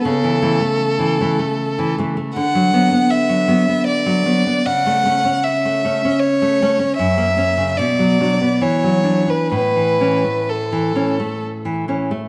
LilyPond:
<<
  \new Staff \with { instrumentName = "Violin" } { \time 3/4 \key a \major \tempo 4 = 77 a'2~ a'8 r8 | fis''4 e''4 d''4 | fis''4 e''4 cis''4 | e''4 d''4 cis''8. b'16 |
b'4 a'4 r4 | }
  \new Staff \with { instrumentName = "Nylon-string guitar" } { \time 3/4 \key a \major cis16 e16 <e a>16 a8 e16 <e a>16 a8 e16 <e a>16 a16 | d16 fis16 <fis b>16 b8 fis16 <fis b>16 b8 fis16 <fis b>16 b16 | cis16 a16 <a cis'>16 cis'8 a16 <a cis'>16 cis'8 a16 <a cis'>16 cis'16 | fis,16 ais16 <ais cis'>16 cis16 b,16 fis16 <fis d'>16 b16 e16 fis16 <fis d'>16 d'16 |
a,16 e16 <e cis'>16 a8 e16 <e cis'>16 a8 e16 <e cis'>16 a16 | }
>>